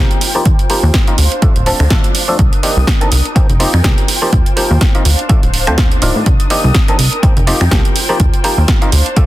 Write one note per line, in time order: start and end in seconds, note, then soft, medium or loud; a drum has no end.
0.00 0.32 F3 medium
0.00 0.32 A#3 medium
0.00 0.32 C4 medium
0.00 0.21 D#4 medium
0.00 0.32 D#4 medium
0.00 0.32 G4 medium
0.00 0.20 A#4 medium
0.00 1.17 G5 medium
0.11 closed hi-hat medium
0.21 1.17 F4 medium
0.21 2.37 C5 medium
0.21 open hi-hat loud
0.35 0.43 F3 medium
0.35 0.43 A#3 medium
0.35 0.44 C4 medium
0.35 0.44 D#4 medium
0.35 0.44 G4 loud
0.45 0.56 D#2 loud
0.45 kick loud
0.45 closed hi-hat medium
0.59 closed hi-hat medium
0.70 1.04 F3 medium
0.70 1.04 A#3 medium
0.70 1.04 C4 medium
0.70 1.05 D#4 medium
0.70 1.05 G4 medium
0.70 open hi-hat loud
0.83 0.91 D#2 loud
0.94 kick loud
0.94 snare loud
0.94 closed hi-hat medium
1.07 1.16 F3 medium
1.07 1.16 A#3 medium
1.07 1.16 C4 medium
1.07 1.16 D#4 medium
1.07 1.16 A#4 medium
1.07 closed hi-hat medium
1.18 1.28 D2 medium
1.18 3.34 D4 medium
1.18 2.38 F5 medium
1.18 open hi-hat loud
1.32 closed hi-hat soft
1.42 1.53 F3 medium
1.42 1.53 A3 medium
1.42 1.53 C4 medium
1.42 1.53 D4 medium
1.42 1.53 A4 medium
1.42 kick loud
1.42 closed hi-hat medium
1.56 1.73 D1 medium
1.56 closed hi-hat medium
1.66 1.83 F3 medium
1.66 1.83 A3 medium
1.66 1.83 C4 medium
1.66 1.83 D4 medium
1.66 1.83 A4 loud
1.66 open hi-hat loud
1.80 1.88 D2 medium
1.80 finger snap medium
1.90 2.01 A1 loud
1.90 2.25 F3 medium
1.90 2.25 A3 medium
1.90 2.25 C4 medium
1.90 2.25 D4 medium
1.90 2.25 A4 medium
1.90 kick loud
1.90 snare loud
1.90 closed hi-hat medium
2.04 closed hi-hat medium
2.15 open hi-hat loud
2.28 2.37 F3 medium
2.28 2.37 A3 medium
2.28 2.37 C4 medium
2.28 2.37 D4 medium
2.28 2.37 A4 loud
2.39 2.49 C2 loud
2.39 3.35 A#4 medium
2.39 3.35 D#6 medium
2.39 kick loud
2.39 closed hi-hat medium
2.53 closed hi-hat medium
2.63 2.98 D#3 medium
2.63 2.98 A#3 medium
2.63 2.98 C4 medium
2.63 2.98 D4 medium
2.63 2.98 G4 medium
2.63 open hi-hat loud
2.77 2.85 C2 loud
2.87 kick loud
2.87 snare loud
2.87 closed hi-hat medium
3.01 3.09 D#3 medium
3.01 3.09 A#3 medium
3.01 3.10 C4 medium
3.01 3.10 D4 medium
3.01 3.10 A4 medium
3.01 closed hi-hat medium
3.12 3.22 C2 medium
3.12 open hi-hat loud
3.25 closed hi-hat soft
3.35 3.47 F1 soft
3.35 3.47 F3 medium
3.35 3.47 A#3 medium
3.35 3.47 C4 medium
3.35 4.08 D#4 medium
3.35 3.47 D#4 medium
3.35 3.47 G4 medium
3.35 4.08 A#4 medium
3.35 5.04 G5 medium
3.35 kick loud
3.35 closed hi-hat medium
3.50 3.66 F1 medium
3.50 closed hi-hat medium
3.60 3.76 F3 medium
3.60 3.77 A#3 medium
3.60 3.77 C4 medium
3.60 3.77 D#4 medium
3.60 3.77 G4 loud
3.60 open hi-hat loud
3.74 3.81 F2 medium
3.74 finger snap medium
3.84 3.94 C2 loud
3.84 4.19 F3 medium
3.84 4.19 A#3 medium
3.84 4.19 C4 medium
3.84 4.19 D#4 medium
3.84 4.19 G4 medium
3.84 kick loud
3.84 snare loud
3.84 closed hi-hat medium
3.98 closed hi-hat medium
4.08 5.04 F4 medium
4.08 5.04 C5 medium
4.08 open hi-hat loud
4.22 4.30 F3 loud
4.22 4.30 A#3 medium
4.22 4.31 C4 medium
4.22 4.31 D#4 medium
4.22 4.31 G4 loud
4.33 4.43 D#2 loud
4.33 kick loud
4.33 closed hi-hat medium
4.46 closed hi-hat medium
4.56 4.91 F3 medium
4.56 4.91 A#3 medium
4.56 4.91 C4 medium
4.56 4.92 D#4 medium
4.56 4.92 G4 medium
4.56 open hi-hat loud
4.71 4.78 D#2 medium
4.81 kick loud
4.81 snare loud
4.81 closed hi-hat medium
4.95 5.03 F3 medium
4.95 5.03 A#3 medium
4.95 5.03 C4 medium
4.95 5.03 D#4 medium
4.95 5.03 A#4 medium
4.95 closed hi-hat medium
5.05 5.15 D2 medium
5.05 7.21 D4 medium
5.05 6.25 C5 medium
5.05 6.25 F5 medium
5.05 open hi-hat loud
5.19 closed hi-hat soft
5.29 5.40 F3 medium
5.29 5.40 A3 medium
5.29 5.40 C4 medium
5.29 5.40 D4 medium
5.29 5.41 A4 medium
5.29 kick loud
5.29 closed hi-hat medium
5.43 5.69 D1 medium
5.43 closed hi-hat soft
5.54 open hi-hat loud
5.67 5.98 D2 medium
5.67 5.76 F3 medium
5.67 5.76 A3 medium
5.67 5.76 C4 medium
5.67 5.76 D4 medium
5.67 5.76 C5 loud
5.67 finger snap medium
5.67 closed hi-hat soft
5.78 kick loud
5.78 snare loud
5.78 closed hi-hat medium
5.92 closed hi-hat medium
6.02 6.12 D1 medium
6.02 6.48 D#3 medium
6.02 6.48 A#3 medium
6.02 6.48 C4 medium
6.02 6.48 D4 medium
6.02 6.48 F4 loud
6.02 open hi-hat loud
6.16 6.23 A2 medium
6.26 6.36 C2 loud
6.26 7.94 A#4 medium
6.26 7.22 D#6 medium
6.26 kick loud
6.26 closed hi-hat medium
6.40 closed hi-hat medium
6.50 6.85 D#3 medium
6.50 6.85 A#3 medium
6.50 6.85 C4 medium
6.50 6.85 D4 medium
6.50 6.85 G4 medium
6.50 open hi-hat loud
6.64 6.72 C2 medium
6.75 kick loud
6.75 snare loud
6.75 closed hi-hat medium
6.88 6.97 D#3 medium
6.88 6.97 A#3 medium
6.88 6.97 C4 medium
6.88 6.97 D4 medium
6.88 6.97 A4 medium
6.88 closed hi-hat medium
6.99 7.09 C2 medium
6.99 open hi-hat loud
7.13 closed hi-hat soft
7.23 7.34 F1 soft
7.23 7.34 F3 medium
7.23 7.34 A#3 medium
7.23 7.34 C4 medium
7.23 7.95 D#4 medium
7.23 7.34 D#4 medium
7.23 7.34 G4 medium
7.23 8.91 G5 medium
7.23 kick loud
7.23 closed hi-hat medium
7.37 7.54 F1 medium
7.37 closed hi-hat soft
7.47 7.64 F3 medium
7.47 7.64 A#3 medium
7.47 7.64 C4 medium
7.47 7.64 D#4 medium
7.47 7.64 G4 loud
7.47 open hi-hat loud
7.61 7.69 F2 medium
7.61 finger snap medium
7.71 7.81 C2 loud
7.71 8.06 F3 medium
7.71 8.06 A#3 medium
7.71 8.06 C4 medium
7.71 8.06 D#4 medium
7.71 8.06 G4 medium
7.71 kick loud
7.71 snare loud
7.71 closed hi-hat medium
7.85 closed hi-hat medium
7.96 8.91 F4 medium
7.96 9.26 C5 medium
7.96 open hi-hat loud
8.09 8.18 F3 loud
8.09 8.18 A#3 medium
8.09 8.18 C4 medium
8.09 8.18 D#4 medium
8.09 8.18 G4 loud
8.20 8.30 D#2 loud
8.20 kick loud
8.20 closed hi-hat medium
8.34 closed hi-hat medium
8.44 8.78 F3 medium
8.44 8.79 A#3 medium
8.44 8.79 C4 medium
8.44 8.79 D#4 medium
8.44 8.79 G4 medium
8.44 open hi-hat loud
8.58 8.65 D#2 medium
8.68 kick loud
8.68 snare loud
8.68 closed hi-hat medium
8.82 8.90 F3 medium
8.82 8.90 A#3 medium
8.82 8.90 C4 medium
8.82 8.90 D#4 medium
8.82 8.90 A#4 medium
8.82 closed hi-hat medium
8.92 9.03 D2 medium
8.92 9.26 D4 medium
8.92 9.26 F5 medium
8.92 open hi-hat loud
9.06 closed hi-hat soft
9.16 9.26 F3 medium
9.16 9.26 A3 medium
9.16 9.26 C4 medium
9.16 9.26 D4 medium
9.16 9.26 A4 medium
9.16 kick loud
9.16 closed hi-hat medium